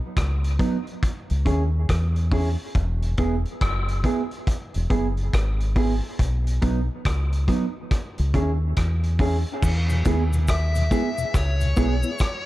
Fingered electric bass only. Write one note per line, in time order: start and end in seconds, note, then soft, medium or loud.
0.17 0.57 C#2 medium
1.31 1.45 C#2 medium
1.46 1.86 D#2 medium
1.90 2.55 E2 medium
2.76 3.16 E1 medium
3.19 3.44 E1 medium
3.62 4.02 F#1 medium
4.76 4.90 E1 medium
4.91 5.31 F#1 medium
5.34 5.99 G#1 medium
6.20 6.60 B1 medium
6.63 6.88 B1 medium
7.06 7.46 C#2 medium
8.19 8.34 C#2 medium
8.35 8.74 D#2 medium
8.78 9.43 E2 medium
9.63 10.03 E2 medium
10.06 10.88 D#2 medium
11.35 11.75 C#2 medium
11.78 12.03 B1 medium